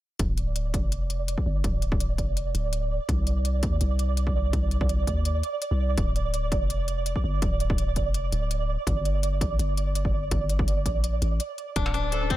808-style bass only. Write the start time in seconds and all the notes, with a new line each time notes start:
0.19 D1
0.74 F1
1.46 G1
1.64 D1
2.18 F1
2.55 D1
3.09 C2
3.63 D#2
3.81 C2
4.53 C2
5.07 D#2
5.71 C2
5.98 D1
6.52 F1
7.24 G1
7.42 D1
7.96 F1
8.33 D1
8.87 G1
9.41 A#1
9.59 G1
10.31 G1
10.86 A#1
11.22 A1
11.76 D1
12.30 F1